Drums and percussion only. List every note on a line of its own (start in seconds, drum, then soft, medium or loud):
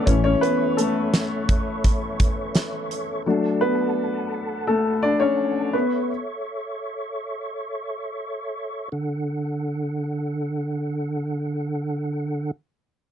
0.07 kick medium
0.07 closed hi-hat medium
0.43 closed hi-hat medium
0.78 closed hi-hat medium
1.14 snare medium
1.14 closed hi-hat medium
1.49 kick medium
1.49 closed hi-hat soft
1.84 kick medium
1.84 closed hi-hat medium
2.20 kick medium
2.20 closed hi-hat medium
2.55 snare medium
2.55 closed hi-hat medium
2.91 closed hi-hat medium